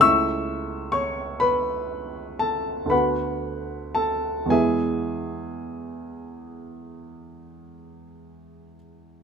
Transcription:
<<
  \new Staff \with { instrumentName = "Grand piano" } { \time 9/8 \key a \major \tempo 4. = 38 <e'' cis''' e'''>4 <cis'' cis'''>8 <b' b''>4 <a' a''>8 <b' fis'' b''>4 <a' a''>8 | <gis' e'' gis''>1 r8 | }
  \new Staff \with { instrumentName = "Grand piano" } { \time 9/8 \key a \major <cis, a cis' e'>2. <d, a b fis'>4. | <e, gis b e'>1~ <e, gis b e'>8 | }
>>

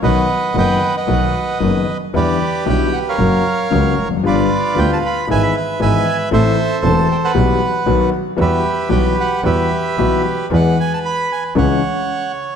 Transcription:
<<
  \new Staff \with { instrumentName = "Bandoneon" } { \time 4/4 \key e \minor \tempo 4 = 114 << { dis''4 g''8. fis''4~ fis''16 r4 | d''4 g''8 fis''16 f''4.~ f''16 r8 | d''4 g''16 a''16 b''8 gis''16 b''16 e''8 gis''8. r16 | e''4 a''8 g''16 fis''4.~ fis''16 r8 |
e''4 g''8 fis''8 e''4. r8 | \key e \major fis''8 gis''16 a''16 b''8 gis''8 fis''4. r8 | } \\ { <b' fis''>4 <b' dis''>8. <b' dis''>2 r16 | <g' b'>4.~ <g' b'>16 <ais' cis''>2 r16 | <f' b'>2 <b' e''>4 <b' e''>4 | <a' c''>4.~ <a' c''>16 b'4.~ b'16 r8 |
<g' b'>2 <g' b'>2 | b'2 cis''2 | } >> }
  \new Staff \with { instrumentName = "Grand piano" } { \clef bass \time 4/4 \key e \minor <b,, b, dis fis b fis'>8 r8 <fis,, fis, dis fis b fis'>8 r8 <b,, b, dis fis b fis'>8 r8 <fis,, fis, dis fis b fis'>8 r8 | <e, d e g b e'>8 r8 <b,, b, d g b e'>8 r8 <fis, cis fis ais fis'>8 r8 <cis, cis fis ais fis'>8 r32 e,32 f,32 fis,32 | <g,, g, d g b f'>8 r8 <d, d g b f'>8 r8 <gis,, gis, e gis b gis'>8 r8 <gis,, gis, e gis b gis'>8 r8 | <a,, a, e a c' a'>8 r8 <e,, e, e a c' a'>8 r8 <b,, b, e g b g'>8 r8 <b,, b, dis fis b fis'>8 r8 |
<e, e g b fis'>8 r8 <b,, b, e g b fis'>8 r8 <e, e g b fis'>8 r8 <b,, b, e g b fis'>8 r8 | \key e \major <e, e gis b gis'>8 r4. <cis, cis e gis cis' gis'>8 r4. | }
  \new Staff \with { instrumentName = "Double bass" } { \clef bass \time 4/4 \key e \minor b,,8 r8 fis,,8 r8 b,,8 r8 fis,,8 r8 | e,8 r8 b,,8 r8 fis,,8 r8 cis,8 f,,8 | g,,8 r8 d,8 r8 gis,,8 r8 gis,,8 r8 | a,,8 r8 e,,8 r8 b,,8 r8 b,,8 r8 |
e,8 r8 b,,8 r8 e,8 r8 b,,8 r8 | \key e \major e,8 r4. cis,8 r4. | }
>>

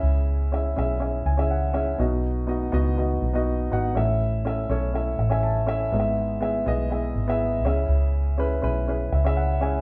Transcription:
<<
  \new Staff \with { instrumentName = "Upright piano" } { \time 4/4 \key cis \minor \tempo 4 = 122 << { cis4 r4. gis''8 fis''8 e''8 | b,4. r2 r8 | a,4. r4 e''16 gis''16 a''4 | gis,4. r2 cis8~ |
cis4 r4. e''8 fis''8 gis''8 | } \\ { <cis' e' gis' e''>4 <cis' e' gis' e''>8 <cis' e' gis' e''>8 <cis' e' gis' e''>8. <cis' e' gis' e''>8. <cis' e' gis'>8 | <b dis' fis' dis''>4 <b dis' fis' dis''>8 <b dis' fis' dis''>8 <b dis' fis' dis''>8. <b dis' fis' dis''>8. <b dis' fis' fis''>8 | <cis' e' a' e''>4 <cis' e' a' e''>8 <cis' e' a' cis''>8 <cis' e' a' e''>8. <cis' e' a' e''>8. <cis' e' a' e''>8 | <b e' gis' dis'' e''>4 <b e' gis' e''>8 <b e' gis' dis''>8 <b e' gis' e''>8. <b e' gis' e''>8. <cis' e' gis' e''>8~ |
<cis' e' gis' e''>4 <cis' e' gis' b'>8 <cis' e' gis' b'>8 <cis' e' gis' b'>8. <cis' e' gis' e''>8. <cis' e' gis' e''>8 | } >> }
  \new Staff \with { instrumentName = "Fingered electric bass" } { \clef bass \time 4/4 \key cis \minor cis,4. b,,4 cis,4. | b,,4. cis,4 b,,4 gis,,8 | a,,4. b,,4 a,,4. | gis,,4. b,,4 gis,,4 cis,8 |
cis,4. b,,4 cis,4. | }
>>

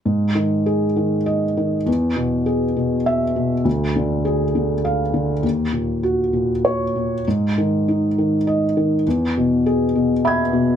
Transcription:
<<
  \new Staff \with { instrumentName = "Felt piano" } { \time 3/4 \key gis \minor \tempo 4 = 101 r2 dis''4 | r2 e''4 | r2 f''4 | r2 cis''4 |
r2 dis''4 | r2 <e'' b'' gis'''>4 | }
  \new Staff \with { instrumentName = "Felt piano" } { \clef bass \time 3/4 \key gis \minor gis,8 dis8 gis'8 dis4 dis8 | e,8 b,8 gis'8 b,4 b,8 | d,8 d8 aes'8 d4 d8 | dis,8 ais,8 fis'8 ais,4 ais,8 |
gis,8 dis8 dis'8 dis4 dis8 | e,8 b,8 gis'8 b,4 b,8 | }
>>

